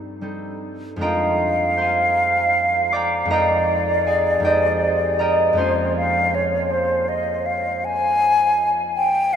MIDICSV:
0, 0, Header, 1, 3, 480
1, 0, Start_track
1, 0, Tempo, 814111
1, 604, Time_signature, 12, 3, 24, 8
1, 604, Tempo, 772201
1, 1564, Tempo, 750000
1, 5912, End_track
2, 0, Start_track
2, 0, Title_t, "Flute"
2, 0, Program_c, 0, 73
2, 603, Note_on_c, 0, 77, 63
2, 2046, Note_on_c, 0, 74, 70
2, 2056, Note_off_c, 0, 77, 0
2, 3492, Note_on_c, 0, 72, 52
2, 3501, Note_off_c, 0, 74, 0
2, 3734, Note_off_c, 0, 72, 0
2, 3739, Note_on_c, 0, 77, 64
2, 3981, Note_on_c, 0, 73, 58
2, 3991, Note_off_c, 0, 77, 0
2, 4214, Note_on_c, 0, 72, 66
2, 4223, Note_off_c, 0, 73, 0
2, 4455, Note_on_c, 0, 75, 66
2, 4465, Note_off_c, 0, 72, 0
2, 4695, Note_on_c, 0, 77, 59
2, 4704, Note_off_c, 0, 75, 0
2, 4942, Note_on_c, 0, 80, 77
2, 4952, Note_off_c, 0, 77, 0
2, 5483, Note_off_c, 0, 80, 0
2, 5658, Note_on_c, 0, 79, 76
2, 5903, Note_off_c, 0, 79, 0
2, 5912, End_track
3, 0, Start_track
3, 0, Title_t, "Harp"
3, 0, Program_c, 1, 46
3, 0, Note_on_c, 1, 43, 37
3, 0, Note_on_c, 1, 55, 25
3, 0, Note_on_c, 1, 60, 28
3, 0, Note_on_c, 1, 63, 30
3, 0, Note_on_c, 1, 69, 33
3, 119, Note_off_c, 1, 55, 0
3, 122, Note_off_c, 1, 60, 0
3, 125, Note_off_c, 1, 63, 0
3, 126, Note_on_c, 1, 55, 27
3, 127, Note_off_c, 1, 69, 0
3, 130, Note_on_c, 1, 60, 31
3, 131, Note_on_c, 1, 63, 27
3, 136, Note_on_c, 1, 69, 30
3, 568, Note_on_c, 1, 41, 48
3, 575, Note_on_c, 1, 56, 33
3, 576, Note_off_c, 1, 60, 0
3, 583, Note_on_c, 1, 60, 38
3, 591, Note_on_c, 1, 62, 35
3, 597, Note_on_c, 1, 82, 79
3, 599, Note_on_c, 1, 65, 34
3, 599, Note_on_c, 1, 70, 62
3, 604, Note_on_c, 1, 75, 63
3, 604, Note_on_c, 1, 79, 62
3, 623, Note_off_c, 1, 43, 0
3, 623, Note_off_c, 1, 55, 0
3, 627, Note_off_c, 1, 63, 0
3, 627, Note_off_c, 1, 69, 0
3, 1067, Note_on_c, 1, 72, 49
3, 1075, Note_on_c, 1, 84, 67
3, 1082, Note_on_c, 1, 77, 48
3, 1096, Note_on_c, 1, 80, 46
3, 1419, Note_off_c, 1, 82, 0
3, 1792, Note_on_c, 1, 86, 74
3, 1794, Note_on_c, 1, 74, 64
3, 1795, Note_off_c, 1, 79, 0
3, 1803, Note_on_c, 1, 79, 63
3, 1811, Note_on_c, 1, 82, 63
3, 1995, Note_off_c, 1, 41, 0
3, 2003, Note_on_c, 1, 41, 48
3, 2006, Note_off_c, 1, 56, 0
3, 2014, Note_on_c, 1, 56, 40
3, 2015, Note_off_c, 1, 60, 0
3, 2022, Note_on_c, 1, 60, 38
3, 2028, Note_off_c, 1, 82, 0
3, 2031, Note_on_c, 1, 63, 43
3, 2033, Note_off_c, 1, 70, 0
3, 2035, Note_on_c, 1, 70, 62
3, 2036, Note_off_c, 1, 75, 0
3, 2036, Note_on_c, 1, 82, 91
3, 2038, Note_off_c, 1, 79, 0
3, 2044, Note_on_c, 1, 75, 65
3, 2054, Note_on_c, 1, 79, 60
3, 2060, Note_off_c, 1, 62, 0
3, 2061, Note_off_c, 1, 86, 0
3, 2065, Note_off_c, 1, 65, 0
3, 2065, Note_off_c, 1, 77, 0
3, 2066, Note_off_c, 1, 74, 0
3, 2514, Note_off_c, 1, 80, 0
3, 2521, Note_on_c, 1, 80, 58
3, 2529, Note_on_c, 1, 68, 42
3, 2530, Note_on_c, 1, 77, 46
3, 2532, Note_on_c, 1, 74, 43
3, 2728, Note_off_c, 1, 41, 0
3, 2735, Note_on_c, 1, 41, 44
3, 2736, Note_off_c, 1, 56, 0
3, 2744, Note_on_c, 1, 56, 36
3, 2745, Note_off_c, 1, 60, 0
3, 2752, Note_off_c, 1, 63, 0
3, 2753, Note_on_c, 1, 60, 37
3, 2758, Note_off_c, 1, 79, 0
3, 2760, Note_on_c, 1, 63, 35
3, 2763, Note_off_c, 1, 75, 0
3, 2766, Note_off_c, 1, 72, 0
3, 2766, Note_on_c, 1, 79, 67
3, 2770, Note_on_c, 1, 75, 57
3, 2772, Note_on_c, 1, 67, 54
3, 2775, Note_on_c, 1, 72, 52
3, 2862, Note_off_c, 1, 82, 0
3, 3242, Note_on_c, 1, 82, 72
3, 3243, Note_off_c, 1, 70, 0
3, 3243, Note_off_c, 1, 75, 0
3, 3246, Note_off_c, 1, 79, 0
3, 3248, Note_on_c, 1, 70, 53
3, 3253, Note_on_c, 1, 75, 65
3, 3254, Note_on_c, 1, 79, 58
3, 3452, Note_off_c, 1, 41, 0
3, 3459, Note_on_c, 1, 41, 47
3, 3461, Note_off_c, 1, 56, 0
3, 3469, Note_on_c, 1, 56, 40
3, 3474, Note_on_c, 1, 58, 43
3, 3481, Note_off_c, 1, 84, 0
3, 3482, Note_off_c, 1, 72, 0
3, 3484, Note_on_c, 1, 61, 43
3, 3484, Note_on_c, 1, 72, 55
3, 3488, Note_off_c, 1, 80, 0
3, 3489, Note_off_c, 1, 77, 0
3, 3489, Note_on_c, 1, 65, 40
3, 3490, Note_on_c, 1, 84, 70
3, 3497, Note_on_c, 1, 77, 52
3, 3506, Note_on_c, 1, 80, 53
3, 3510, Note_off_c, 1, 63, 0
3, 3514, Note_off_c, 1, 75, 0
3, 3515, Note_off_c, 1, 79, 0
3, 3517, Note_off_c, 1, 67, 0
3, 3517, Note_off_c, 1, 74, 0
3, 3658, Note_off_c, 1, 82, 0
3, 5025, Note_off_c, 1, 68, 0
3, 5249, Note_off_c, 1, 60, 0
3, 5744, Note_off_c, 1, 70, 0
3, 5912, Note_off_c, 1, 41, 0
3, 5912, Note_off_c, 1, 56, 0
3, 5912, Note_off_c, 1, 58, 0
3, 5912, Note_off_c, 1, 61, 0
3, 5912, Note_off_c, 1, 65, 0
3, 5912, Note_off_c, 1, 72, 0
3, 5912, Note_off_c, 1, 77, 0
3, 5912, Note_off_c, 1, 80, 0
3, 5912, Note_off_c, 1, 84, 0
3, 5912, End_track
0, 0, End_of_file